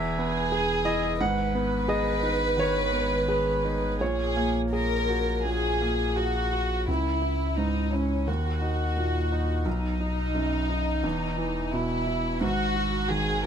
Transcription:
0.00 1.23 E1 medium
0.00 1.16 E2 medium
0.00 1.16 G#4 medium
0.00 0.82 E5 medium
0.18 0.72 B3 soft
0.52 1.07 G#4 soft
0.85 1.20 E4 medium
0.85 1.17 D#5 medium
1.19 4.03 G#1 medium
1.19 2.55 G#2 medium
1.19 3.96 B4 medium
1.19 1.85 F#5 medium
1.55 2.10 B3 soft
1.88 2.44 G#4 medium
1.88 2.54 D#5 medium
2.23 2.79 D#4 soft
2.57 3.14 D#3 soft
2.57 3.25 C#5 medium
2.93 3.50 B3 soft
3.28 3.86 G#4 soft
3.28 3.97 B4 medium
3.64 4.00 D#4 soft
4.01 6.87 A#1 medium
4.01 5.41 A#2 soft
4.01 4.62 G#4 medium
4.01 6.49 C#5 medium
4.37 4.94 A#3 soft
4.72 5.30 G#4 soft
4.72 5.41 A#4 medium
5.09 5.67 F#4 soft
5.45 6.84 A#2 soft
5.45 6.17 G#4 medium
5.81 6.38 A#3 soft
6.17 6.88 F#4 soft
6.17 6.74 G#4 soft
6.53 6.88 F#4 soft
6.88 8.24 C#2 soft
6.88 8.30 C#2 medium
6.88 7.54 E4 soft
7.22 7.79 E4 soft
7.58 8.14 G#2 soft
7.58 7.93 D#4 soft
7.93 8.29 C#4 soft
7.93 8.28 E4 soft
8.28 9.62 D#2 soft
8.28 9.68 D#2 soft
8.28 9.66 F#4 soft
8.61 9.17 D#4 soft
8.97 9.52 A#2 soft
9.32 9.66 D#4 soft
9.65 11.00 B1 soft
9.65 11.06 B1 medium
9.65 11.74 D#4 soft
10.01 10.56 D#4 soft
10.35 10.90 F#2 soft
10.70 11.04 D#4 soft
11.04 12.44 E1 soft
11.04 12.38 E2 soft
11.38 11.94 E3 soft
11.73 12.29 B2 soft
11.73 12.43 E4 soft
12.07 12.42 E4 soft
12.41 13.46 G#1 medium
12.41 13.46 G#2 medium
12.41 13.10 F#4 medium
12.76 13.31 F#4 soft
13.09 13.46 D#3 soft
13.09 13.45 G#4 medium

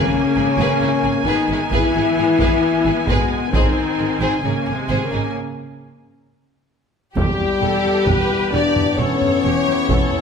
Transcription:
0.00 1.23 C#3 medium
0.00 1.23 A#3 medium
0.00 1.22 C#4 medium
0.00 0.11 G#4 medium
0.00 0.11 B4 medium
0.00 5.31 G#5 medium
0.36 0.44 G#1 soft
0.36 0.45 G#4 soft
0.57 0.65 G#1 medium
0.57 0.80 G#4 medium
0.57 0.80 B4 medium
0.81 0.89 G#1 soft
0.81 0.90 E4 medium
0.81 0.90 G#4 soft
1.04 1.12 G#1 soft
1.04 1.13 G#4 soft
1.25 1.34 G#1 medium
1.25 1.70 D#3 medium
1.25 1.69 B3 medium
1.25 1.71 D#4 medium
1.25 1.48 G#4 medium
1.25 1.48 B4 medium
1.49 1.57 G#1 soft
1.49 1.59 E4 soft
1.49 1.59 G#4 medium
1.70 1.80 G#1 medium
1.70 3.08 E3 medium
1.70 3.04 B3 medium
1.70 3.08 E4 medium
1.70 1.93 G#4 medium
1.70 1.93 B4 medium
1.70 taiko medium
1.95 2.03 G#1 soft
1.95 2.05 E4 soft
1.95 2.04 G#4 medium
2.18 2.26 G#1 soft
2.18 2.27 G#4 soft
2.39 2.48 G#1 medium
2.39 2.61 G#4 medium
2.39 2.61 B4 medium
2.39 taiko medium
2.85 2.93 G#1 soft
2.85 2.95 G#4 soft
3.07 3.16 G#1 medium
3.07 3.53 B2 medium
3.07 3.53 G#3 medium
3.07 3.53 B3 medium
3.07 3.29 G#4 medium
3.07 3.29 B4 medium
3.07 taiko medium
3.51 3.62 G#1 medium
3.51 4.42 D#3 medium
3.51 4.41 C4 medium
3.51 4.43 D#4 medium
3.51 3.75 G#4 medium
3.51 3.75 C5 medium
3.51 taiko medium
3.99 4.08 G#1 soft
3.99 4.07 G#4 soft
4.20 4.29 G#1 medium
4.20 4.42 G#4 medium
4.20 4.42 C5 medium
4.42 4.52 G#1 soft
4.42 4.73 C#3 medium
4.42 4.73 A#3 medium
4.42 4.72 C#4 medium
4.42 4.52 D#4 soft
4.42 4.52 G#4 soft
4.66 4.76 G#1 soft
4.66 4.74 G#4 soft
4.72 5.05 C3 medium
4.72 5.04 G#3 medium
4.72 5.03 C4 medium
4.88 4.98 G#1 medium
4.88 5.10 G#4 soft
4.88 5.10 C5 medium
5.03 5.34 C#3 medium
5.03 5.34 A#3 medium
5.03 5.35 C#4 medium
5.12 5.21 G#1 soft
5.12 5.21 D#4 soft
5.12 5.20 G#4 soft
7.16 7.24 E1 medium
7.16 7.25 E2 medium
7.16 10.21 E3 medium
7.16 8.49 G3 medium
7.16 10.21 B3 medium
7.16 8.49 G4 medium
7.16 7.59 G4 medium
7.16 taiko medium
7.39 7.47 E2 soft
7.62 7.70 E1 soft
7.62 7.70 E2 medium
7.62 8.07 A4 medium
7.85 7.93 E2 soft
8.07 8.16 E1 medium
8.07 8.16 E2 medium
8.07 8.53 B4 medium
8.07 taiko medium
8.30 8.38 E2 soft
8.52 8.62 E1 soft
8.52 8.60 E2 soft
8.52 8.98 D4 medium
8.52 8.98 G4 medium
8.52 8.99 D5 medium
8.76 8.84 E2 medium
8.76 taiko low-mid soft
8.98 9.07 E1 medium
8.98 9.06 E2 medium
8.98 10.21 C#4 medium
8.98 9.44 A4 medium
8.98 10.21 C#5 medium
9.21 9.29 E2 medium
9.21 taiko low-mid soft
9.43 9.52 E1 soft
9.43 9.53 E2 medium
9.43 9.89 G4 medium
9.67 9.75 E2 soft
9.89 9.98 E1 medium
9.89 9.98 E2 medium
9.89 10.21 A4 medium
9.89 taiko medium
10.13 10.21 E2 medium

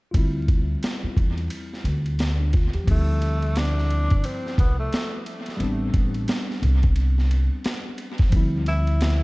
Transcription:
0.11 0.74 D2 medium
0.11 2.83 G3 medium
0.11 2.52 F4 medium
0.11 kick medium
0.11 ride medium
0.16 2.84 C4 medium
0.16 1.83 E4 medium
0.48 kick medium
0.48 ride medium
0.83 snare loud
0.83 hi-hat pedal soft
0.83 ride medium
1.03 muted upright bass stroke soft
1.17 1.46 E2 medium
1.17 kick medium
1.17 ride medium
1.38 ride soft
1.50 ride medium
1.73 snare soft
1.84 2.70 D2 medium
1.84 ride medium
2.06 ride soft
2.19 snare loud
2.19 hi-hat pedal soft
2.19 ride medium
2.40 2.52 D4 medium
2.53 2.73 F4 medium
2.53 kick loud
2.53 snare soft
2.53 ride medium
2.73 2.85 E2 medium
2.73 3.06 G4 medium
2.73 ride soft
2.84 4.06 D2 loud
2.84 5.54 F3 medium
2.84 5.55 G3 medium
2.84 kick medium
2.84 ride medium
2.88 3.59 A3 medium
2.88 5.57 C4 medium
2.88 5.58 E4 medium
2.88 crash medium
3.22 ride medium
3.42 ride soft
3.56 4.27 D4 medium
3.56 snare loud
3.56 hi-hat pedal soft
3.56 ride medium
3.78 snare soft
3.90 ride soft
4.10 4.22 G1 medium
4.10 kick medium
4.10 ride soft
4.24 4.58 C4 medium
4.24 ride medium
4.46 snare soft
4.58 4.88 C2 medium
4.58 4.78 B3 medium
4.58 kick medium
4.58 ride medium
4.79 5.23 A3 medium
4.93 snare loud
4.93 hi-hat pedal soft
4.93 ride medium
5.26 ride medium
5.46 snare soft
5.46 ride soft
5.57 5.90 A1 medium
5.57 8.27 G3 medium
5.57 8.28 B3 medium
5.57 ride medium
5.61 8.29 C4 medium
5.61 8.30 D4 medium
5.94 6.24 A1 medium
5.94 kick medium
5.94 ride medium
6.14 ride soft
6.28 snare loud
6.28 hi-hat pedal soft
6.28 ride medium
6.50 snare soft
6.62 7.47 C2 medium
6.62 ride medium
6.83 kick medium
6.83 ride soft
6.96 ride medium
7.18 snare soft
7.31 ride medium
7.64 snare loud
7.64 hi-hat pedal soft
7.64 ride medium
7.98 ride medium
8.18 kick medium
8.18 snare soft
8.18 ride soft
8.29 9.23 D2 medium
8.29 9.23 F3 medium
8.29 9.23 G3 medium
8.29 kick medium
8.29 ride medium
8.34 9.23 C4 medium
8.34 9.23 E4 medium
8.66 9.23 E4 loud
8.66 ride medium
8.87 ride soft
9.01 snare loud
9.01 hi-hat pedal soft
9.01 ride medium

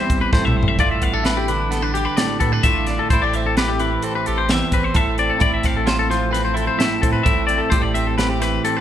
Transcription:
0.00 0.33 E2 medium
0.00 0.76 E3 medium
0.00 3.11 G3 soft
0.00 0.77 C4 medium
0.00 0.21 C5 medium
0.10 0.28 A1 medium
0.10 kick medium
0.10 closed hi-hat medium
0.21 0.33 B4 medium
0.33 0.54 B1 medium
0.33 0.78 A2 medium
0.33 0.45 C5 medium
0.33 kick medium
0.33 snare medium
0.45 0.57 E5 medium
0.45 mid tom medium
0.56 0.78 A1 medium
0.56 0.68 C5 medium
0.63 floor tom medium
0.68 0.80 E5 medium
0.79 0.97 A1 medium
0.79 1.49 A2 medium
0.79 1.23 F4 medium
0.79 0.91 D5 medium
0.79 kick medium
0.79 closed hi-hat medium
0.91 1.03 E5 medium
1.02 2.07 A1 medium
1.02 1.14 B3 soft
1.02 1.15 F5 medium
1.02 kick medium
1.02 closed hi-hat soft
1.14 1.70 D4 soft
1.14 1.25 A4 medium
1.24 1.94 E4 medium
1.24 1.38 B4 medium
1.24 snare medium
1.24 closed hi-hat medium
1.37 1.49 G4 medium
1.48 3.11 D3 medium
1.48 1.71 B4 medium
1.48 closed hi-hat soft
1.71 1.82 B3 soft
1.71 1.83 A4 medium
1.71 snare soft
1.71 closed hi-hat medium
1.82 2.41 D4 soft
1.82 1.94 B4 medium
1.94 2.05 G4 medium
1.94 2.65 G4 medium
1.94 closed hi-hat medium
2.05 2.16 B4 medium
2.16 2.64 A2 medium
2.16 2.40 D5 medium
2.16 snare medium
2.16 closed hi-hat medium
2.40 2.59 A2 medium
2.40 2.53 B3 soft
2.40 2.52 A4 medium
2.40 kick medium
2.40 closed hi-hat medium
2.52 2.88 D4 soft
2.52 2.64 B4 medium
2.63 2.99 A1 medium
2.63 3.11 A2 medium
2.63 3.09 F4 soft
2.63 2.87 E5 medium
2.63 kick medium
2.63 closed hi-hat medium
2.87 3.10 D4 soft
2.87 2.99 D5 medium
2.87 snare soft
2.87 closed hi-hat medium
2.99 3.10 A4 medium
3.10 3.98 A1 medium
3.10 4.51 A2 medium
3.10 3.24 E4 medium
3.10 3.22 C5 medium
3.10 kick medium
3.10 closed hi-hat medium
3.22 3.57 G4 medium
3.22 3.34 D5 medium
3.33 4.03 C4 soft
3.33 3.46 E5 medium
3.33 closed hi-hat medium
3.46 3.57 A4 medium
3.57 4.27 G4 medium
3.57 3.69 B4 medium
3.57 snare medium
3.57 closed hi-hat medium
3.68 3.80 G4 medium
3.79 5.89 E3 medium
3.79 4.03 B4 medium
3.79 closed hi-hat soft
4.02 4.73 C4 soft
4.02 4.15 A4 medium
4.02 closed hi-hat medium
4.15 4.26 B4 medium
4.26 4.62 A1 medium
4.26 4.96 G4 medium
4.26 4.38 A4 medium
4.26 closed hi-hat soft
4.38 4.50 C5 medium
4.49 4.96 E2 medium
4.49 4.73 E5 medium
4.49 snare loud
4.49 closed hi-hat medium
4.72 4.90 A1 medium
4.72 5.18 C4 soft
4.72 4.84 B4 medium
4.72 kick medium
4.72 closed hi-hat medium
4.84 4.96 C5 medium
4.94 5.30 A1 medium
4.94 5.39 A2 medium
4.94 5.40 A4 medium
4.94 5.19 E5 medium
4.94 kick medium
4.94 closed hi-hat medium
5.18 5.64 C4 soft
5.18 5.31 D5 soft
5.18 closed hi-hat soft
5.30 5.42 A4 medium
5.39 5.59 A1 medium
5.39 6.77 A2 medium
5.39 5.86 E4 medium
5.39 5.53 D5 medium
5.39 kick medium
5.39 closed hi-hat medium
5.54 5.66 E5 medium
5.63 6.69 A1 medium
5.63 6.31 C4 soft
5.63 5.77 F5 medium
5.63 kick medium
5.63 snare soft
5.63 closed hi-hat medium
5.77 5.87 A4 medium
5.86 6.54 F4 medium
5.86 5.99 C5 medium
5.86 snare medium
5.86 closed hi-hat medium
5.99 6.10 A4 medium
6.10 7.69 F3 medium
6.10 6.32 C5 medium
6.10 snare soft
6.10 closed hi-hat medium
6.31 7.02 C4 soft
6.31 6.44 B4 medium
6.31 closed hi-hat medium
6.35 snare soft
6.45 6.56 C5 medium
6.54 7.24 E4 medium
6.54 6.67 A4 medium
6.54 closed hi-hat medium
6.67 6.80 C5 medium
6.78 7.24 A2 medium
6.78 7.03 E5 medium
6.78 snare medium
6.78 closed hi-hat medium
7.02 7.21 A2 medium
7.02 7.49 C4 medium
7.02 7.12 A4 medium
7.02 kick medium
7.02 closed hi-hat medium
7.12 7.25 B4 medium
7.23 7.61 A1 medium
7.23 7.70 A2 medium
7.23 7.72 E4 soft
7.23 7.46 E5 medium
7.23 kick medium
7.23 closed hi-hat medium
7.47 7.70 C4 soft
7.47 7.60 D5 medium
7.47 closed hi-hat soft
7.58 7.71 A4 medium
7.70 8.59 A1 medium
7.70 8.81 A2 medium
7.70 8.18 G4 medium
7.70 7.82 C5 medium
7.70 kick medium
7.70 closed hi-hat medium
7.82 7.94 D5 medium
7.94 8.64 C4 soft
7.94 8.07 E5 medium
7.94 closed hi-hat medium
8.07 8.17 A4 medium
8.18 8.81 G4 medium
8.18 8.29 B4 medium
8.18 snare medium
8.18 closed hi-hat medium
8.29 8.42 G4 medium
8.40 8.81 E3 medium
8.40 8.64 B4 medium
8.40 snare soft
8.40 closed hi-hat medium
8.65 8.81 C4 medium
8.65 8.77 A4 medium
8.65 closed hi-hat medium
8.77 8.81 B4 medium

